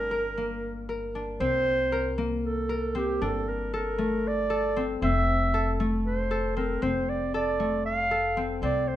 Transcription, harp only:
Already playing: A3 C4 D4 A4
0.11 A#4
0.37 A#3
0.89 A#4
1.15 D4
1.40 C4
1.92 A#4
2.18 A#3
2.69 A#4
2.95 C4
3.21 D4
3.74 A4
3.98 A3
4.50 A4
4.76 C4
5.02 C4
5.54 A4
5.80 A3
6.31 A4
6.57 C4
6.82 C4
7.34 A4
7.60 A3
8.11 A4
8.37 C4
8.63 C4

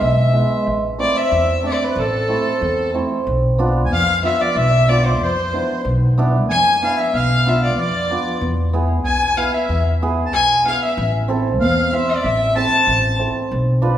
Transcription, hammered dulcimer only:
Already playing: G#3
0.33 G#3 B3 E4
0.98 A3 C4 E4
1.62 A3 C4 D4
2.29 A3 C4 E4
2.94 A3 C4 E4
3.58 B3 D4 F4
4.23 B3 D4 F4
4.88 B3 D4 F4
5.53 B3 D4 E4
6.18 B3 D4 E4
6.83 B3 D4 E4
7.46 B3 D4 F4
8.10 B3 D4 F4
8.73 B3 E4 G#4
9.37 B3 E4 B4
10.02 B3 E4 G#4
10.65 B3 E4 G#4
11.28 C4 E4 A4
11.92 C4 E4 C5
12.56 C4 E4 A4
13.19 C4 E4 A4
13.82 D4 F4 B4

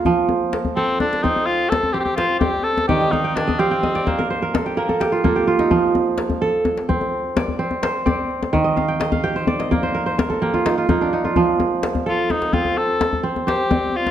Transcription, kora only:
Already playing: A#3 F4 A#4
0.06 F3
0.77 A4
1.24 C4
1.94 C4
2.18 C5
2.41 C4 D5
2.89 D#3 D5
3.01 D#5
3.13 F5
3.24 G5
3.36 D5
3.47 D#5
3.59 G4 F5
3.71 G5
3.83 D#5
3.95 D5
4.07 A#3 C5
4.18 A#4
4.30 C5
4.42 A#4
4.54 A4
4.66 G4
4.77 A#3 A#4
4.89 A4
5.00 G4
5.12 F4
5.24 A#3 A4
5.36 G4
5.47 F4
5.59 D#4
5.71 F3
6.42 A4
6.89 C4
7.36 D5
7.59 C4
7.83 C5
8.06 C4 D5
8.53 D#3
8.64 D#5
8.76 F5
8.88 G5
9.00 D#5
9.12 F5
9.23 G4 G5
9.36 C5
9.47 D5
9.59 D#5
9.71 A#3 D5
9.83 C5
9.95 A#4
10.06 C5
10.18 A#4
10.30 A4
10.42 A#3 G4
10.54 F4
10.66 D#4
10.78 F4
10.89 A#3 D#4
11.01 D4
11.13 D#4
11.25 F4
11.36 F3
12.06 A4
12.53 C4
13.23 C4
13.47 C5
13.70 C4 D5

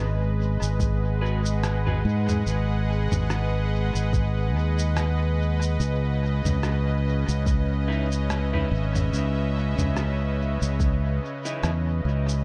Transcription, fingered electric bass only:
Already playing: G#1
0.62 G#1
2.05 G#2
2.47 G#1
3.12 G#1
3.95 G#1
4.55 D#2
5.80 C#2
6.45 C#2
7.28 C#2
8.71 G#1
9.13 C#2
9.78 C#2
10.62 C#2
11.63 E2
12.05 C#2

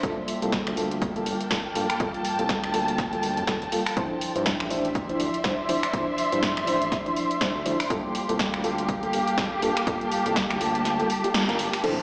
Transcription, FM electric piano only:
0.03 G3 A#3 F4 A4
0.42 G3 A#3 F4 A4
0.77 G3 A#3 F4 A4
1.16 G3 A#3 F4 A4
1.50 G3 A#3 F4 A4
1.75 G3 A#3 F4 A4
2.00 G3 A#3 F4 A4
2.39 G3 A#3 F4 A4
2.73 G3 A#3 F4 A4
3.12 G3 A#3 F4 A4
3.47 G3 A#3 F4 A4
3.72 G3 A#3 F4 A4
3.96 F3 D4 E4 C5
4.35 F3 D4 E4 C5
4.70 F3 D4 E4 C5
5.09 F3 D4 E4 C5
5.44 F3 D4 E4 C5
5.68 F3 D4 E4 C5
5.93 F3 D4 E4 C5
6.32 F3 D4 E4 C5
6.67 F3 D4 E4 C5
7.06 F3 D4 E4 C5
7.41 F3 D4 E4 C5
7.65 F3 D4 E4 C5
7.90 G3 A#3 F4 A4
8.29 G3 A#3 F4 A4
8.64 G3 A#3 F4 A4
9.03 G3 A#3 F4 A4
9.37 G3 A#3 F4 A4
9.62 G3 A#3 F4 A4
9.87 G3 A#3 F4 A4
10.26 G3 A#3 F4 A4
10.60 G3 A#3 F4 A4
10.99 G3 A#3 F4 A4
11.24 G3 A#3 F4 G4
11.48 G3 A#3 F4 A#4
11.83 F3 D4 E4 C5

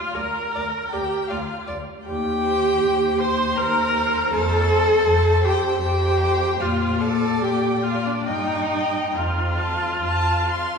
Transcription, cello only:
0.16 D2
0.56 D2
0.95 D2
1.32 D2
1.69 D2
2.07 D#2
2.84 D#2
3.58 D#2
4.32 F2
5.06 F2
5.81 F2
6.61 A#2
7.40 A#2
8.26 G2
9.14 F2
10.04 F2

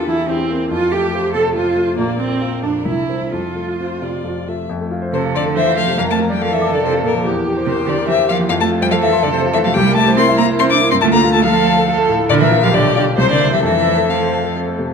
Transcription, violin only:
Already playing: A4
0.29 G4
0.70 A4
1.12 C5
1.55 C5
1.97 D5
2.41 A#4
3.33 A4
3.78 C5
4.02 D5
4.48 E5
5.14 C5
5.36 D5
5.56 E5
5.77 F5
5.98 F5
6.10 A5
6.33 G5
6.42 F5
6.53 E5
6.75 D5
6.84 C5
7.05 A#4
7.67 C5
7.89 D5
8.08 E5
8.29 F5
8.49 F5
8.61 A5
8.82 G5
8.91 F5
9.02 E5
9.23 D5
9.33 C5
9.53 E5
9.65 F5
9.74 G5
9.96 A5
10.17 C6
10.38 A#5
10.59 C6
10.70 D6
10.91 C6
11.01 A5
11.12 A#5
11.33 A5
11.44 F5
12.29 D5
12.41 E5
12.63 F5
12.74 D5
12.96 D5
13.19 C5
13.31 D5
13.53 E5
13.64 E5
14.10 F5

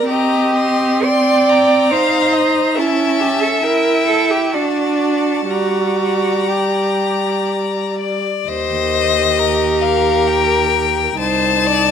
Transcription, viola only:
0.09 C4
1.91 D#4
2.78 C#4
3.64 E4
4.55 D4
5.48 G3
8.48 G4
11.19 D#4

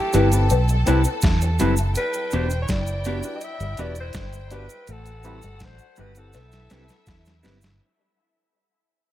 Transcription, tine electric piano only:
0.13 C4 E4 G4 B4
0.33 C4 E4 G4 B4
0.86 C4 E4 G4 B4
1.42 G4 B4
1.60 C4 E4 G4 B4
2.33 D4 F#4 G4 B4
3.06 D4 F#4 G4 B4
3.25 D4 F#4 G4 B4
3.78 D4 F#4 G4 B4
4.51 D4 F#4 G4 B4
5.24 C4 E4 G4 B4
5.98 C4 E4 G4 B4
6.17 C4 E4 G4 B4
6.71 C4 E4 G4 B4
7.26 G4 B4
7.44 C4 E4 G4 B4

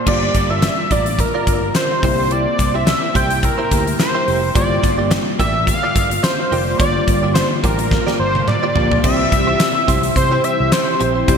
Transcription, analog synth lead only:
0.08 D5
0.50 E5
0.92 D5
1.20 A#4
1.76 C5
2.32 D5
2.75 E5
3.16 G5
3.44 A#4
4.00 C5
4.56 D5
5.39 E5
5.66 F5
6.23 C5
6.78 D5
7.34 C5
7.63 A#4
8.20 C5
8.48 D5
9.04 E5
10.17 C5
10.44 E5
10.72 C5
11.28 C5

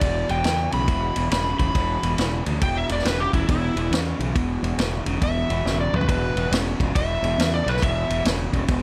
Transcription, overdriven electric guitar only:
0.01 E2 B2
0.30 E2 B2
0.45 E2 C#3
0.73 E2 C#3
0.88 E2 B2
1.16 E2 B2
1.31 E2 C#3
1.60 E2 C#3
1.75 E2 B2
2.03 E2 B2
2.19 E2 C#3
2.46 E2 C#3
2.62 E2 B2
2.90 E2 B2
3.05 E2 C#3
3.34 E2 C#3
3.49 E2 B2
3.77 E2 B2
3.92 E2 C#3
4.21 E2 C#3
4.36 E2 B2
4.64 E2 B2
4.79 E2 C#3
5.07 E2 C#3
5.22 E2 B2
5.50 E2 B2
5.65 E2 C#3
5.93 E2 C#3
6.09 E2 B2
6.37 E2 B2
6.52 E2 C#3
6.80 E2 C#3
6.95 E2 B2
7.23 E2 B2
7.39 E2 C#3
7.66 E2 C#3
7.82 E2 B2
8.10 E2 B2
8.25 E2 C#3
8.52 E2 C#3
8.68 E2 B2

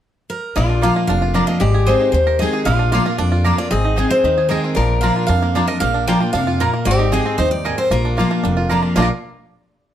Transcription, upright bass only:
0.56 A#1
1.08 F1
1.61 G#1
2.13 D#2
2.66 A#1
3.19 F2
3.71 G#1
4.24 D#2
4.77 A#1
5.29 F2
5.82 A#1
6.34 F2
6.86 G#1
7.38 D#2
7.91 A#1
8.43 F1
8.96 A#1

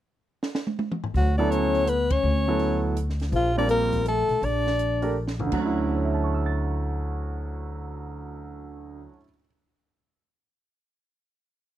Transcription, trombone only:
1.16 F#3
1.37 D4
1.51 C#4
1.87 B3
2.11 C#4
3.32 F3
3.56 D4
3.69 A#3
4.05 A3
4.43 D4

